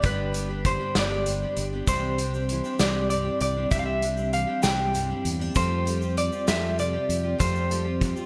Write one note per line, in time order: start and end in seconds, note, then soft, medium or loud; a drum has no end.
0.00 0.77 G1 medium
0.00 0.34 G2 medium
0.00 1.26 G2 medium
0.00 0.63 D3 medium
0.00 0.34 D3 medium
0.00 0.31 G3 medium
0.00 0.32 B3 medium
0.00 0.33 D4 medium
0.00 0.65 G4 medium
0.00 kick loud
0.00 closed hi-hat medium
0.04 1.58 D4 medium
0.04 0.34 G4 medium
0.04 0.68 B4 medium
0.32 0.49 G3 soft
0.32 0.49 B3 medium
0.32 0.48 D4 medium
0.32 0.47 G4 medium
0.32 closed hi-hat medium
0.48 0.81 G3 soft
0.48 0.81 B3 soft
0.48 0.79 D4 soft
0.48 0.78 G4 medium
0.64 2.49 D3 medium
0.64 2.51 G4 medium
0.64 0.94 C5 medium
0.64 kick medium
0.64 closed hi-hat medium
0.79 0.95 G3 soft
0.79 0.95 B3 soft
0.79 0.95 D4 soft
0.79 0.95 G4 soft
0.95 1.44 G1 medium
0.95 1.26 G2 medium
0.95 1.26 D3 medium
0.95 1.25 G3 medium
0.95 1.84 B3 medium
0.95 1.25 B3 medium
0.95 1.26 D4 medium
0.95 1.27 G4 medium
0.95 1.62 D5 medium
0.95 snare loud
0.95 closed hi-hat medium
1.26 1.85 G2 medium
1.26 1.42 G3 medium
1.26 1.42 B3 medium
1.26 1.42 D4 medium
1.26 1.41 G4 medium
1.26 closed hi-hat medium
1.42 1.74 G3 soft
1.42 1.73 B3 soft
1.42 1.72 D4 soft
1.42 1.71 G4 soft
1.56 1.81 G1 medium
1.56 1.88 D4 medium
1.56 closed hi-hat medium
1.73 1.88 G3 soft
1.73 1.88 B3 soft
1.73 1.88 D4 soft
1.73 1.88 G4 soft
1.87 2.60 C2 medium
1.87 2.18 C3 medium
1.87 2.49 C3 medium
1.87 2.19 E3 medium
1.87 2.17 G3 medium
1.87 2.18 C4 medium
1.87 3.41 D4 medium
1.87 2.19 D4 medium
1.87 2.19 G4 medium
1.87 2.80 C5 medium
1.87 kick loud
1.87 closed hi-hat medium
1.87 shaker medium
2.18 2.34 G3 soft
2.18 2.82 G3 soft
2.18 2.34 C4 medium
2.18 2.34 D4 medium
2.18 2.33 G4 medium
2.18 closed hi-hat medium
2.34 2.66 G3 soft
2.34 2.65 C4 soft
2.34 2.64 D4 soft
2.34 2.63 G4 soft
2.34 shaker soft
2.49 3.69 E3 medium
2.49 4.34 E4 medium
2.49 closed hi-hat medium
2.64 2.79 G3 soft
2.64 2.80 C4 soft
2.64 2.80 D4 soft
2.64 2.80 G4 medium
2.64 shaker soft
2.79 3.28 C2 medium
2.79 3.10 C3 medium
2.79 3.11 E3 medium
2.79 3.09 G3 medium
2.79 4.04 G3 medium
2.79 3.10 C4 medium
2.79 3.11 D4 medium
2.79 3.11 G4 medium
2.79 3.09 D5 medium
2.79 snare medium
2.79 closed hi-hat medium
2.79 shaker medium
3.10 3.69 G2 medium
3.10 3.26 G3 medium
3.10 3.26 C4 medium
3.10 3.24 D4 medium
3.10 3.23 G4 medium
3.10 3.39 D5 medium
3.10 closed hi-hat medium
3.10 shaker soft
3.25 3.57 G3 soft
3.25 3.56 C4 soft
3.25 3.55 D4 soft
3.25 3.54 G4 soft
3.40 3.65 C2 medium
3.40 3.69 D4 medium
3.40 3.70 D5 medium
3.40 closed hi-hat medium
3.55 3.71 G3 soft
3.55 3.71 C4 soft
3.55 3.72 D4 soft
3.55 3.71 G4 soft
3.71 4.44 C2 medium
3.71 4.02 C3 medium
3.71 4.34 C3 medium
3.71 4.02 E3 medium
3.71 4.00 G3 medium
3.71 4.01 C4 medium
3.71 4.02 D4 medium
3.71 5.25 D4 medium
3.71 4.03 G4 medium
3.71 3.79 E5 medium
3.71 kick loud
3.71 closed hi-hat medium
3.71 shaker medium
3.79 3.85 F5 medium
3.86 4.33 E5 medium
4.02 4.17 G3 medium
4.02 4.66 G3 medium
4.02 4.18 C4 medium
4.02 4.16 D4 medium
4.02 4.15 G4 medium
4.02 closed hi-hat medium
4.16 4.48 G3 soft
4.16 4.48 C4 soft
4.16 4.47 D4 soft
4.16 4.45 G4 soft
4.16 shaker soft
4.33 5.53 E3 medium
4.33 4.63 F5 medium
4.33 closed hi-hat medium
4.46 4.61 G3 soft
4.46 4.62 C4 soft
4.46 4.62 D4 soft
4.46 4.62 G4 soft
4.62 5.12 C2 medium
4.62 4.93 C3 medium
4.62 4.94 E3 medium
4.62 4.91 G3 medium
4.62 4.92 C4 medium
4.62 4.94 D4 medium
4.62 4.94 G4 medium
4.62 5.28 G5 medium
4.62 snare medium
4.62 closed hi-hat medium
4.62 shaker medium
4.67 5.87 G3 medium
4.93 5.52 G2 medium
4.93 5.09 G3 medium
4.93 5.09 C4 medium
4.93 5.09 D4 medium
4.93 5.08 G4 medium
4.93 closed hi-hat medium
4.93 shaker soft
5.09 5.41 G3 soft
5.09 5.40 C4 soft
5.09 5.39 D4 soft
5.09 5.38 G4 soft
5.25 5.49 E2 medium
5.25 5.41 B3 medium
5.25 closed hi-hat medium
5.39 5.55 G3 soft
5.39 5.54 C4 soft
5.39 5.56 D4 soft
5.39 5.55 G4 medium
5.55 7.39 F2 medium
5.55 6.29 F2 loud
5.55 5.86 F3 medium
5.55 5.84 A3 medium
5.55 5.85 C4 medium
5.55 7.09 C4 medium
5.55 5.86 F4 medium
5.55 5.87 G4 medium
5.55 6.17 C5 medium
5.55 kick medium
5.55 closed hi-hat medium
5.55 shaker medium
5.85 6.49 G3 medium
5.85 6.01 A3 medium
5.85 6.02 C4 medium
5.85 6.01 F4 medium
5.85 5.99 G4 medium
5.85 closed hi-hat medium
6.00 6.33 C4 soft
6.00 6.33 F4 soft
6.00 6.31 G4 soft
6.00 shaker soft
6.17 7.73 F3 medium
6.17 7.42 G4 medium
6.17 6.48 D5 medium
6.17 closed hi-hat medium
6.32 6.47 C4 soft
6.32 6.47 F4 soft
6.32 6.48 G4 soft
6.32 shaker soft
6.47 6.96 F2 medium
6.47 6.78 F3 medium
6.47 7.69 G3 medium
6.47 6.77 A3 medium
6.47 6.78 C4 medium
6.47 6.79 F4 medium
6.47 6.79 G4 medium
6.47 6.77 E5 medium
6.47 snare loud
6.47 closed hi-hat medium
6.47 shaker medium
6.78 7.36 C3 medium
6.78 6.93 A3 medium
6.78 6.94 C4 medium
6.78 6.93 F4 medium
6.78 6.92 G4 medium
6.78 7.36 D5 medium
6.78 closed hi-hat medium
6.78 shaker soft
6.93 7.25 C4 soft
6.93 7.23 F4 soft
6.93 7.22 G4 soft
7.09 7.33 F2 medium
7.09 7.40 C4 medium
7.09 closed hi-hat medium
7.23 7.38 C4 soft
7.23 7.39 F4 soft
7.23 7.39 G4 soft
7.38 8.26 F2 medium
7.38 8.13 F2 medium
7.38 7.70 F3 medium
7.38 7.68 A3 medium
7.38 7.69 C4 medium
7.38 7.70 F4 medium
7.38 7.71 G4 medium
7.38 8.26 C5 medium
7.38 kick loud
7.38 closed hi-hat medium
7.38 shaker medium
7.55 shaker soft
7.69 8.26 G3 medium
7.69 7.85 A3 medium
7.69 7.86 C4 medium
7.69 7.85 F4 medium
7.69 7.83 G4 medium
7.69 closed hi-hat medium
7.84 8.17 C4 soft
7.84 8.16 F4 soft
7.84 8.15 G4 soft
8.00 8.26 F3 medium
8.00 8.26 G4 medium
8.00 kick medium
8.00 closed hi-hat medium
8.00 shaker soft
8.16 8.26 C4 soft
8.16 8.26 F4 soft
8.16 8.26 G4 medium
8.16 shaker soft